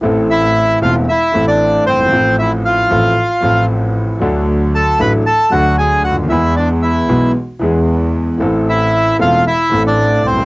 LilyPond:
<<
  \new Staff \with { instrumentName = "Bandoneon" } { \time 4/4 \key a \minor \tempo 4 = 115 r8 <e' e''>4 <f' f''>8 <e' e''>8. <d' d''>8. <c' c''>8~ | <c' c''>8 <e' e''>8 <f' f''>2 r4 | r4 <a' a''>8 <b' b''>8 <a' a''>8 <fis' fis''>8 <gis' gis''>8 <fis' fis''>8 | <e' e''>8 <d' d''>8 <e' e''>4 r2 |
r8 <e' e''>4 <f' f''>8 <e' e''>8. <d' d''>8. <c' c''>8 | }
  \new Staff \with { instrumentName = "Grand piano" } { \clef bass \time 4/4 \key a \minor << { <a,, a, e a c' a'>4. <e,, e, e a c' a'>8 r8 <a,, a, e a c' a'>4. | <a,, a, f a c' a'>4. <a,, a, f a c' a'>8 r8 <a,, a, f a c' a'>4. | <d, d fis a d' a'>4. <a,, a, fis a d' a'>8 r8 <d, d fis a d' a'>4. | <e, e gis b gis'>4. <b,, b, e gis b gis'>8 r8 <e, e gis b gis'>4. |
<a,, a, e a c' a'>4. <e,, e, e a c' a'>8 r8 <a,, a, e a c' a'>4. | } \\ { r2. r8 r32 fis,,32 g,,32 gis,,32 | r1 | r2. r8 r32 cis,32 d,32 dis,32 | r1 |
r2. r8 r32 b,,32 c,32 r32 | } >> }
  \new Staff \with { instrumentName = "Double bass" } { \clef bass \time 4/4 \key a \minor a,,4. e,,8 r8 a,,4 g,,8 | a,,4. a,,8 r8 a,,4. | d,4. a,,8 r8 d,4 d,8 | e,4. b,,8 r8 e,4. |
a,,4. e,,8 r8 a,,4 c,8 | }
>>